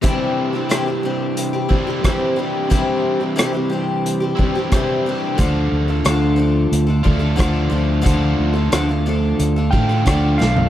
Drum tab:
HH |x---x---x---x---|x---x---x---x---|x---x---x---x---|x---x---x---x---|
SD |----r-------r---|----r-------r---|----r-------r---|----r-------r-o-|
FT |----------------|----------------|----------------|---------------o|
BD |o---------o-o---|o---------o-o---|o---------o-o---|o---------o-o---|